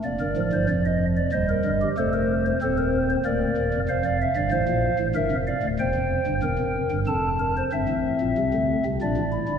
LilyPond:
<<
  \new Staff \with { instrumentName = "Pipe organ" } { \time 3/4 \key bes \major \tempo 4 = 93 << { d''2 ees''4 | c''4 c''4 d''4 | f''2 e''8 f''8 | g''2 a''4 |
r2. | } \\ { r16 bes'8 c''16 d''16 ees''8 d''16 c''16 bes'8 g'16 | a'16 bes'8 c''16 a'16 bes'8 c''16 bes'4 | c''16 d''16 e''16 d''16 c''4 bes'8 d''8 | c''4 bes'4 a'8 bes'16 c''16 |
e''2 d''4 | } >> }
  \new Staff \with { instrumentName = "Pipe organ" } { \clef bass \time 3/4 \key bes \major << { bes8 f4. g4 | a4 c'4 bes4 | r2. | r2. |
c'2 d'8 e'8 | } \\ { <f,, f,>16 <g,, g,>16 <a,, a,>16 <g,, g,>16 <f,, f,>4 <ees,, ees,>8 <g,, g,>8 | <f,, f,>4 <ees,, ees,>4 <d,, d,>8 <ees,, ees,>16 <f,, f,>16 | <f,, f,>16 <f,, f,>8 <g,, g,>16 <a,, a,>16 <bes,, bes,>8 <a,, a,>16 <g,, g,>16 <f,, f,>8 <d,, d,>16 | <e,, e,>16 <f,, f,>8 <g,, g,>16 <e,, e,>16 <f,, f,>8 <g,, g,>16 <f,, f,>4 |
<g,, g,>16 <a,, a,>8 <bes,, bes,>16 <c, c>16 <d, d>8 <c, c>16 <bes,, bes,>16 <a,, a,>8 <g,, g,>16 | } >> }
>>